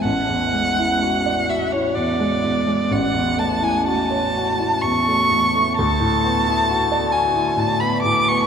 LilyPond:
<<
  \new Staff \with { instrumentName = "Violin" } { \time 3/4 \key a \major \tempo 4 = 63 fis''4. e''16 cis''16 d''4 | fis''8 a''16 gis''16 a''4 cis'''4 | a''4. gis''8 a''16 b''16 d'''16 cis'''16 | }
  \new Staff \with { instrumentName = "Grand piano" } { \time 3/4 \key a \major a,,16 e,16 gis16 e'16 fis'16 d''16 fis'16 e'16 e,16 gis16 e,16 gis16 | a,,16 e,16 a16 e'16 fis'16 cis''16 fis'16 e'16 e,16 a16 e,16 a16 | d,16 a,16 b16 e'16 fis'16 d''16 fis'16 e'16 a,16 b16 a,16 b16 | }
>>